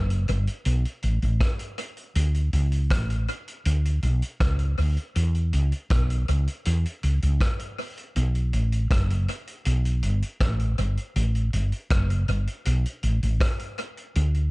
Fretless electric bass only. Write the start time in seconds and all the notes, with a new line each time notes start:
Already playing: F#1
0.29 G1
0.66 B1
1.04 A1
1.23 A1
2.16 D2
2.53 C#2
2.91 A1
3.66 D2
4.03 B1
4.41 C#2
4.79 D2
5.16 E2
5.54 C#2
5.91 B1
6.29 C#2
6.67 E2
7.04 C#2
7.23 C#2
8.16 B1
8.54 A1
8.91 F#1
9.66 B1
10.04 G1
10.41 A1
10.79 G1
11.16 A1
11.53 G1
11.91 F#1
12.28 G1
12.66 B1
13.04 A1
13.23 A1
14.16 D2